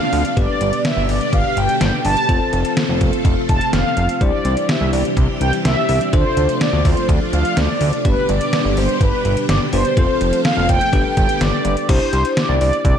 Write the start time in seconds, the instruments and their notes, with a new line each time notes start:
Already playing: string machine C3 F3 A3 D4 F4, tine electric piano C4 D4 F4 A4, analog polysynth F5
0.13 analog synth bass D2, open hi-hat
0.25 closed hi-hat
0.37 analog synth bass G1, string machine B2 D3 G3 G4, tine electric piano B3 D4 G4 B4, analog polysynth D5, kick, closed hi-hat
0.61 analog synth bass G1, closed hi-hat
0.73 closed hi-hat
0.85 analog polysynth E5, snare, closed hi-hat
0.97 analog synth bass G1
1.09 analog synth bass G1, analog polysynth D5, open hi-hat
1.21 closed hi-hat
1.33 analog synth bass G1, analog polysynth F5, kick, closed hi-hat
1.57 analog synth bass G1, analog polysynth G5, closed hi-hat
1.69 closed hi-hat
1.81 analog synth bass G1, snare, closed hi-hat
2.05 analog synth bass G1, analog polysynth A5, open hi-hat
2.17 closed hi-hat
2.29 analog synth bass F1, string machine C3 F3 A3 F4 A4, tine electric piano C4 F4 A4 C5, kick, closed hi-hat
2.53 analog synth bass F1, closed hi-hat
2.65 closed hi-hat
2.77 snare, closed hi-hat
2.89 analog synth bass F1
3.01 analog synth bass F1, kick, closed hi-hat
3.13 closed hi-hat
3.25 analog synth bass F1, kick, closed hi-hat
3.49 analog synth bass F1, analog polysynth A5, kick, closed hi-hat
3.61 closed hi-hat
3.73 analog synth bass F1, analog polysynth F5, snare, closed hi-hat
3.97 analog synth bass F1, closed hi-hat
4.09 closed hi-hat
4.21 analog synth bass C2, string machine C3 E3 G3 D4 G4, tine electric piano D4 E4 G4 C5, analog polysynth D5, kick, closed hi-hat
4.45 analog synth bass C2, closed hi-hat
4.57 closed hi-hat
4.69 analog polysynth E5, snare, closed hi-hat
4.81 analog synth bass C2
4.93 analog synth bass C2, analog polysynth D5, open hi-hat
5.05 closed hi-hat
5.17 analog synth bass C2, kick, closed hi-hat
5.41 analog synth bass C2, analog polysynth G5, closed hi-hat
5.53 closed hi-hat
5.65 analog synth bass C2, analog polysynth E5, snare, closed hi-hat
5.89 analog synth bass C2, open hi-hat
6.01 closed hi-hat
6.13 analog synth bass D2, string machine F3 A3 F4, tine electric piano D4 F4 A4 C5, analog polysynth C5, kick, closed hi-hat
6.37 analog synth bass D2, closed hi-hat
6.49 closed hi-hat
6.61 analog polysynth D5, snare, closed hi-hat
6.73 analog synth bass D2
6.85 analog synth bass D2, analog polysynth C5, kick, open hi-hat
6.97 closed hi-hat
7.09 analog synth bass D2, kick, closed hi-hat
7.33 analog synth bass D2, analog polysynth F5, closed hi-hat
7.45 closed hi-hat
7.57 analog synth bass D2, analog polysynth D5, snare, closed hi-hat
7.81 analog synth bass D2, open hi-hat
7.93 closed hi-hat
8.05 analog synth bass G1, string machine B2 D3 G3 G4, tine electric piano B3 D4 G4 B4, analog polysynth B4, kick, closed hi-hat
8.29 analog synth bass G1, analog polysynth D5, closed hi-hat
8.41 closed hi-hat
8.53 snare, closed hi-hat
8.65 analog synth bass G1
8.77 analog synth bass G1, analog polysynth C5, open hi-hat
8.89 closed hi-hat
9.01 analog synth bass G1, analog polysynth B4, kick, closed hi-hat
9.25 analog synth bass G1, closed hi-hat
9.37 closed hi-hat
9.49 analog synth bass G1, analog polysynth D5, snare, closed hi-hat
9.73 analog synth bass G1, tine electric piano B3 D4 G4 B4, analog polysynth C5, open hi-hat
9.85 closed hi-hat
9.97 analog synth bass F1, string machine C3 F3 A3 F4 A4, tine electric piano C4 F4 A4 C5, kick, closed hi-hat
10.21 analog synth bass F1, closed hi-hat
10.33 closed hi-hat
10.45 analog polysynth F5, snare, closed hi-hat
10.57 analog synth bass F1
10.69 analog synth bass F1, analog polysynth G5, kick, closed hi-hat
10.81 closed hi-hat
10.93 analog synth bass G1, string machine D3 G3 B3 G4, tine electric piano D4 G4 A4 B4, kick, closed hi-hat
11.17 analog synth bass G1, analog polysynth G5, kick, closed hi-hat
11.29 closed hi-hat
11.41 analog synth bass G1, analog polysynth D5, snare, closed hi-hat
11.65 analog synth bass G1, closed hi-hat
11.77 closed hi-hat
11.89 analog synth bass C2, tine electric piano D4 E4 G4 C5, analog polysynth C5, kick, closed hi-hat, crash
12.13 analog synth bass C2, closed hi-hat
12.25 closed hi-hat
12.37 analog polysynth D5, snare, closed hi-hat
12.49 analog synth bass C2
12.61 analog synth bass C2, analog polysynth D5, open hi-hat
12.73 closed hi-hat
12.85 analog synth bass C2, analog polysynth D5, kick, closed hi-hat